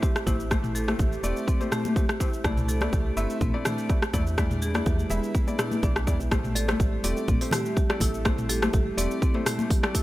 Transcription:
Already playing: analog synth pad A3 E4 G4 C5 E5
0.02 felt piano A3 G4 C5, marimba G4, kick, cabasa
0.16 cross-stick, cabasa
0.27 fm bass A1, felt piano A3 G4 C5, marimba E4, kick, high conga, low conga, cabasa
0.40 cabasa
0.51 marimba A3, felt piano A3 G4 C5, kick, cross-stick, high conga, cabasa
0.64 mid tom, cabasa
0.75 marimba A4, cabasa
0.88 felt piano A3 G4 C5, cross-stick, high conga, cabasa
0.99 fm bass A1, marimba G4, kick, low conga, cabasa
1.12 cabasa
1.23 fm bass E1, felt piano A3 G4 D5, marimba C4, cabasa
1.37 cabasa
1.48 marimba C4, kick, cabasa
1.61 felt piano A3 G4 C5, high conga, cabasa
1.72 marimba A3, cross-stick, mid tom, cabasa
1.85 high conga, cabasa
1.96 felt piano A3 G4 C5, marimba G4, kick, cabasa
2.09 cross-stick, cabasa
2.20 felt piano A3 G4 C5, marimba E4, kick, cabasa
2.33 cabasa
2.44 fm bass C2, marimba A3, felt piano A3 E4 D5, analog synth pad D4 E5, kick, cross-stick, high conga, cabasa
2.57 mid tom, cabasa
2.69 marimba A4, cabasa
2.81 felt piano A3 E4 D5, cross-stick, high conga, cabasa
2.93 fm bass C2, marimba G4, kick, cabasa
3.17 fm bass G1, felt piano A3 E4 E5, marimba C4, cabasa
3.30 cabasa
3.41 fm bass C2, marimba C4, kick, mid tom, high conga, cabasa
3.54 felt piano A3 E4 D5
3.65 marimba A3, cross-stick, mid tom, low conga, cabasa
3.78 cabasa
3.89 felt piano A3 E4 D5, marimba G4, kick, cabasa
4.02 cross-stick, cabasa
4.13 fm bass E2, felt piano A3 E4 D5, marimba E4, kick, high conga, low conga, cabasa
4.27 cabasa
4.38 felt piano G#3 E4 D5, marimba G#3, analog synth pad G#3 E4 B4, kick, cross-stick, high conga, cabasa
4.51 mid tom, cabasa
4.62 marimba G#4, cabasa
4.74 felt piano G#3 E4 D5, cross-stick, high conga, cabasa
4.86 fm bass E2, marimba G4, kick, low conga, cabasa
4.99 high conga, cabasa
5.10 fm bass E1, felt piano G#3 E4 E5, marimba B3, low conga, cabasa
5.23 cabasa
5.34 marimba B3, kick, cabasa
5.48 felt piano G#3 E4 D5, high conga, cabasa
5.59 marimba E4, cross-stick, mid tom, cabasa
5.71 high conga, cabasa
5.83 fm bass B1, felt piano G#3 E4 D5, marimba D4, kick, cabasa
5.96 marimba G#3, cross-stick, cabasa
6.07 fm bass E2, felt piano G#3 E4 D5, marimba B3, kick, cabasa
6.20 fm bass B1, cabasa
6.31 fm bass A1, analog synth pad G3 C4 E4 A4 E5, felt piano A3 G4 C5, marimba A3, kick, cross-stick, high conga, cabasa
6.44 mid tom, cabasa
6.55 marimba A4, kalimba D5, open hi-hat, cabasa
6.68 felt piano A3 G4 C5, kalimba C5, cross-stick, high conga, cabasa
6.80 fm bass A1, marimba G4, kick, cabasa
7.04 fm bass E1, felt piano A3 G4 D5, marimba C4, kalimba A4, open hi-hat, cabasa
7.17 kalimba A4, cabasa
7.28 fm bass A1, marimba C4, kick, mid tom, high conga, cabasa
7.41 felt piano A3 G4 C5, open hi-hat
7.51 marimba A3, kalimba G4, cross-stick, open hi-hat, mid tom, low conga, cabasa
7.65 kalimba G4, cabasa
7.76 marimba G4, kick, cabasa
7.90 felt piano A3 G4 D5, cross-stick, cabasa
8.00 fm bass A1, felt piano A3 G4 A4, marimba E4, kick, open hi-hat, high conga, low conga, cabasa
8.14 cabasa
8.25 felt piano A3 G4 C5, marimba A3, kick, cross-stick, high conga, cabasa
8.38 mid tom, cabasa
8.49 kalimba G4, marimba A4, open hi-hat, cabasa
8.62 felt piano A3 G4 C5, kalimba A4, cross-stick, high conga, cabasa
8.73 fm bass A1, marimba G4, kalimba A4, kick, low conga, cabasa
8.97 fm bass E1, felt piano A3 G4 D5, marimba C4, open hi-hat, cabasa
9.11 cabasa
9.22 marimba C4, kick, cabasa
9.34 felt piano A3 G4 C5, high conga
9.46 marimba A3, cross-stick, open hi-hat, mid tom, cabasa
9.59 high conga, cabasa
9.70 marimba G4, kick, open hi-hat, cabasa
9.83 felt piano A3 G4 D5, cross-stick, cabasa
9.94 felt piano A3 G4 A4, marimba E4, kick, open hi-hat, cabasa

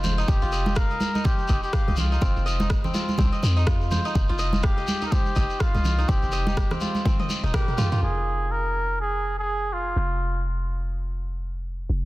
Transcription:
Already playing: 808-style bass F1, kora C4 D#4 F4 D#5
0.04 kora C5, high conga, low conga, shekere
0.18 kora D#4, shekere
0.28 808-style bass F1, muted trumpet G4, kick, shekere
0.42 808-style bass F1, kora F4, shekere
0.52 kora D#5, shekere
0.66 high conga, shekere
0.75 muted trumpet A#4, kora F5, kick, cross-stick, shekere
0.90 kora D#5, shekere
1.00 high conga, shekere
1.15 kora D#4, high conga, shekere
1.25 muted trumpet G4, kora C5, kick, high conga, low conga, shekere
1.38 shekere
1.48 808-style bass F1, kora D#5, kick, shekere
1.63 muted trumpet G4, shekere
1.73 kora F5, kick, cross-stick, shekere
1.88 808-style bass C2, kora D#5, high conga, shekere
1.96 muted trumpet F4, low conga, shekere
2.12 kora D#4, shekere
2.21 808-style bass F1, kora C4, kick, low conga, shekere
2.36 808-style bass F1, shekere
2.46 kora D#5, shekere
2.60 kora D#4, high conga, shekere
2.70 kick, cross-stick, shekere
2.84 kora C4, low conga, shekere
2.94 kora F4, high conga, shekere
3.08 high conga, shekere
3.18 808-style bass C2, kora C4, kick, high conga, low conga, shekere
3.32 kora D#5, shekere
3.43 808-style bass F2, high conga, shekere
3.57 kora D#4, shekere
3.67 kora F4, kick, cross-stick, shekere
3.81 shekere
3.91 kora C5, high conga, low conga, shekere
4.05 kora D#4, shekere
4.15 808-style bass F1, kick, shekere
4.29 808-style bass F1, kora F4, shekere
4.38 kora D#5, shekere
4.53 high conga, shekere
4.63 muted trumpet G4, kora F5, kick, cross-stick, shekere
4.77 kora D#5, shekere
4.87 high conga, shekere
5.01 kora D#4, high conga, shekere
5.06 muted trumpet A#4
5.12 muted trumpet G4, kora C5, kick, high conga, low conga, shekere
5.26 shekere
5.36 808-style bass F1, kora D#5, kick, shekere
5.50 shekere
5.60 muted trumpet F4, kora F5, kick, cross-stick, shekere
5.74 808-style bass C2, kora D#5, high conga, shekere
5.85 low conga, shekere
5.98 kora D#4, shekere
6.08 808-style bass F1, kora C4, muted trumpet G4, kick, low conga, shekere
6.22 808-style bass F1, shekere
6.32 kora D#5, shekere
6.47 kora D#4, high conga, shekere
6.57 kick, cross-stick, shekere
6.71 kora C4, cross-stick, low conga, shekere
6.80 kora F4, high conga, shekere
6.95 high conga, shekere
7.05 kora C4, kick, high tom, high conga, low conga, shekere
7.19 kora D#5, high tom, shekere
7.30 high conga, shekere
7.44 808-style bass D#1, kora D#4, mid tom, shekere
7.54 muted trumpet G4, kora A#4, kick, cross-stick, mid tom, shekere
7.68 mid tom, shekere
7.78 kora F4, mid tom, high conga, low conga, shekere
7.91 kora F4, mid tom, shekere
8.02 808-style bass F1, muted trumpet G#4
8.51 muted trumpet A#4
9.01 muted trumpet G#4
9.39 muted trumpet G#4
9.73 muted trumpet F4
9.96 808-style bass F1
11.89 808-style bass F1

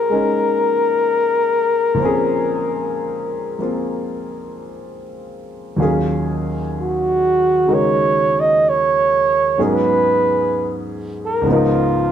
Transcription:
Already playing: grand piano A#2 F3 C4 C#4 G#4, flugelhorn A#4
0.10 grand piano G#3 C#4 D#4 A#4
1.95 grand piano A#2 F3
2.00 grand piano C4 C#4
2.05 grand piano G#4
3.59 grand piano F3 A#3 C4 F4
5.76 grand piano D#2 A#2 F#3 C#4 F5
5.82 grand piano G#4
6.80 flugelhorn F#4
7.67 grand piano C#3 G#3 D#4 F#4 A#4
7.74 flugelhorn C#5
8.40 flugelhorn D#5
8.69 flugelhorn C#5
9.58 grand piano G#2 F#3 B3 C#4 G#4
9.65 flugelhorn B4
11.25 flugelhorn A#4
11.42 grand piano C#2 G#2
11.46 grand piano F3 B3
11.51 grand piano D#4 A#4, flugelhorn F4

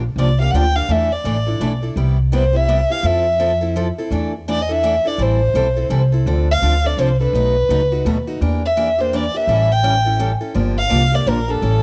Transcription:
0.16 upright bass C2, steel-string acoustic guitar D3 F3 A#3 D4 G4, violin D5
0.40 steel-string acoustic guitar A#3 D4 G4, violin F5
0.51 upright bass D2, steel-string acoustic guitar D3 F3 A#3 D4, violin F#5
0.55 steel-string acoustic guitar G4, violin G5
0.75 steel-string acoustic guitar A#3 D4 G4, violin F5
0.88 upright bass E2, steel-string acoustic guitar E3 A3 D4 E4 A4, violin E5
1.13 violin D5
1.24 upright bass A1, steel-string acoustic guitar E3 A3 D4 E4 A4
1.47 steel-string acoustic guitar D4 E4 A4
1.60 upright bass B1, steel-string acoustic guitar E3 A3 D4 E4 A4
1.83 steel-string acoustic guitar D4 E4 A4
1.96 upright bass C2, steel-string acoustic guitar C3 G3 B3 E4 G4
2.32 steel-string acoustic guitar C3 G3 B3 E4 G4, violin C5
2.53 steel-string acoustic guitar B3 E4 G4, violin E5
2.68 steel-string acoustic guitar C3 G3 B3 E4 G4
2.90 steel-string acoustic guitar B3 E4 G4, violin F5
3.03 upright bass F2, steel-string acoustic guitar F3 C4 E4 A4, violin E5
3.39 steel-string acoustic guitar F3 C4 E4 A4
3.61 steel-string acoustic guitar C4 E4 A4
3.76 steel-string acoustic guitar F3 C4 E4 A4
3.98 steel-string acoustic guitar C4 E4 A4
4.11 upright bass E2, steel-string acoustic guitar E3 A3 D4 E4 A4
4.48 steel-string acoustic guitar E3 A3 D4 E4 A4, violin D5
4.62 violin D#5
4.69 steel-string acoustic guitar D4 E4 A4, violin E5
4.83 steel-string acoustic guitar E3 A3 D4 E4 A4
5.05 steel-string acoustic guitar D4 E4 A4, violin D5
5.18 upright bass A1, steel-string acoustic guitar E3 G3 C4 E4 A4, violin C5
5.54 upright bass B1, steel-string acoustic guitar E3 G3 C4 E4 A4
5.76 steel-string acoustic guitar C4 E4 A4
5.90 upright bass C2, steel-string acoustic guitar E3 G3 C4 E4 A4
6.12 steel-string acoustic guitar C4 E4 A4
6.26 upright bass D2, steel-string acoustic guitar D3 F3 C4 D4 A4
6.52 violin F5
6.62 upright bass D2, steel-string acoustic guitar D3 F3 C4 D4 A4
6.84 steel-string acoustic guitar C4 D4 A4, violin D5
6.97 upright bass C2, steel-string acoustic guitar D3 F3 C4 D4 A4
7.01 violin C5
7.20 steel-string acoustic guitar C4 D4 A4, violin B4
7.33 upright bass B1, steel-string acoustic guitar B2 F#3 A3 D#4 F#4
7.69 upright bass C#2, steel-string acoustic guitar B2 F#3 A3 D#4 F#4
7.92 steel-string acoustic guitar A3 D#4 F#4
8.05 upright bass D#2, steel-string acoustic guitar B2 F#3 A3 D#4 F#4
8.27 steel-string acoustic guitar A3 D#4 F#4
8.41 upright bass E2, steel-string acoustic guitar E3 A#3 D4 G4
8.66 violin E5
8.77 steel-string acoustic guitar E3 A#3 D4 G4
8.98 steel-string acoustic guitar A#3 D4 G4, violin C5
9.13 steel-string acoustic guitar E3 A#3 D4 G4, violin D5
9.34 steel-string acoustic guitar A#3 D4 G4, violin E5
9.47 upright bass A1, steel-string acoustic guitar E3 G3 C#4 E4 A4
9.72 violin G5
9.83 steel-string acoustic guitar E3 G3 C#4 E4 A4
10.05 steel-string acoustic guitar C#4 E4 A4
10.19 steel-string acoustic guitar E3 G3 C#4 E4 A4
10.41 steel-string acoustic guitar C#4 E4 A4
10.54 upright bass G1, steel-string acoustic guitar D3 F3 A#3 D4 G4
10.79 violin F5
10.90 upright bass C2, steel-string acoustic guitar D3 F3 A#3 D4 G4
11.12 steel-string acoustic guitar A#3 D4 G4, violin D5
11.26 upright bass A#1, steel-string acoustic guitar D3 F3 A#3 D4 G4, violin A#4
11.48 steel-string acoustic guitar A#3 D4 G4, violin A4
11.62 upright bass A1, steel-string acoustic guitar E3 G3 C#4 E4 A4

